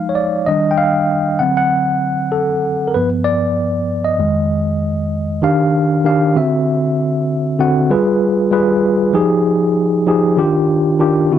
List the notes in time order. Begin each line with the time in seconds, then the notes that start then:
Already playing: F3 G#3 D#4 F5
0.09 C#5
0.15 D5
0.46 D#3 G3 D4 D#5
0.71 G5
0.78 F5
1.39 D3 F#3 C4 F#5
1.57 F#5
2.32 A4
2.88 A#4
2.94 G2 F3 B3 B4
3.24 D5
4.04 D#5
4.18 F2 D#3 G#3
5.42 D#3 D4 G4 F5
6.04 D#3 D4 G4 F5
6.36 D3 C4 F#4 E5
7.59 D3 C4 F#4 F#5
7.90 G3 F4 G#4 B4
8.51 G3 F4 G#4 B4
9.13 F3 D#4 G4 G#4
10.06 F3 D#4 G4 G#4
10.37 D#3 D4 F4 G4
10.99 D#3 D4 F4 G4
11.31 D3 C4 E4 F#4